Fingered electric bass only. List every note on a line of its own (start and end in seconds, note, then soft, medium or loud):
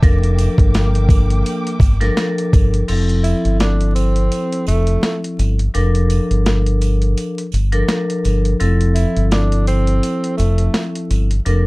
0.03 0.46 F1 loud
0.58 1.42 G1 loud
1.80 2.08 G1 medium
2.54 2.81 G1 loud
2.89 3.32 F1 loud
3.45 4.28 G1 medium
4.67 4.95 F1 medium
5.39 5.67 G1 medium
5.75 6.18 F1 loud
6.30 7.13 G1 medium
7.53 7.81 G1 medium
8.25 8.52 G1 loud
8.61 9.04 F1 loud
9.16 9.99 G1 medium
10.39 10.67 F1 medium
11.10 11.38 G1 loud
11.46 11.67 F1 loud